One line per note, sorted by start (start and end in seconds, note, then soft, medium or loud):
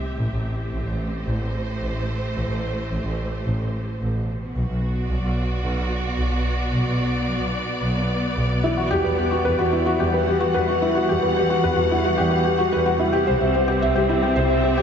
0.00 4.28 A2 medium
0.00 1.65 C4 medium
0.00 4.28 G4 medium
0.00 0.89 E5 medium
0.19 0.27 A1 medium
0.32 0.49 A1 medium
0.43 4.28 A3 medium
0.69 0.82 A1 medium
0.69 4.28 C5 medium
0.87 1.04 A1 medium
1.27 1.45 A1 medium
1.82 1.99 A1 medium
2.36 2.45 A1 medium
2.50 2.67 A1 medium
2.91 3.00 A1 medium
3.04 3.22 A1 medium
3.46 3.63 A1 medium
4.00 4.18 A1 medium
4.29 8.65 B2 medium
4.45 8.65 F#4 medium
4.55 4.64 B1 medium
4.61 13.00 B3 medium
4.68 4.86 B1 medium
4.99 10.24 D5 medium
5.10 5.18 B1 medium
5.23 5.40 B1 medium
5.63 5.81 B1 medium
6.18 6.36 B1 medium
6.72 6.81 B1 medium
6.86 7.03 B1 medium
7.27 7.36 B1 medium
7.41 7.58 B1 medium
7.82 7.99 B1 medium
8.36 8.54 B1 medium
8.64 13.00 E3 medium
8.64 8.77 E4 medium
8.77 14.82 G3 medium
8.77 8.90 F#4 medium
8.91 9.00 E2 medium
8.91 9.04 G4 medium
9.04 9.22 E2 medium
9.04 9.12 B4 medium
9.18 9.31 G4 medium
9.31 9.39 F#4 medium
9.45 9.54 E2 medium
9.45 9.58 B4 medium
9.59 9.77 E2 medium
9.59 9.67 F#4 medium
9.73 9.86 E4 medium
9.86 9.99 F#4 medium
9.99 10.17 E2 medium
9.99 10.13 G4 medium
10.14 10.22 B4 medium
10.20 14.02 F#5 medium
10.27 10.40 G4 medium
10.40 10.49 F#4 medium
10.54 10.72 E2 medium
10.54 10.68 B4 medium
10.68 10.76 F#4 medium
10.82 10.95 E4 medium
10.95 11.08 F#4 medium
11.09 11.18 E2 medium
11.09 11.22 G4 medium
11.22 11.40 E2 medium
11.22 11.31 B4 medium
11.37 11.50 G4 medium
11.50 11.58 F#4 medium
11.64 11.73 E2 medium
11.64 11.77 B4 medium
11.77 11.95 E2 medium
11.77 11.85 F#4 medium
11.91 12.04 E4 medium
12.04 12.18 F#4 medium
12.17 12.36 E2 medium
12.17 12.31 G4 medium
12.31 12.39 B4 medium
12.45 12.58 G4 medium
12.58 12.67 F#4 medium
12.72 12.91 E2 medium
12.72 12.86 B4 medium
12.86 12.94 F#4 medium
12.99 14.82 C3 medium
12.99 13.13 E4 medium
13.05 14.82 C4 medium
13.13 13.26 G4 medium
13.27 13.36 C2 medium
13.27 13.40 C5 medium
13.41 13.58 C2 medium
13.41 13.49 E5 medium
13.54 13.68 C5 medium
13.68 13.76 G4 medium
13.82 13.91 C2 medium
13.82 13.95 E5 medium
13.95 14.13 C2 medium
13.95 14.03 G4 medium
14.09 14.22 E4 medium
14.23 14.36 G4 medium
14.36 14.54 C2 medium
14.36 14.49 C5 medium
14.48 14.82 E5 medium
14.48 14.58 E5 medium
14.64 14.77 C5 medium
14.77 14.82 G4 medium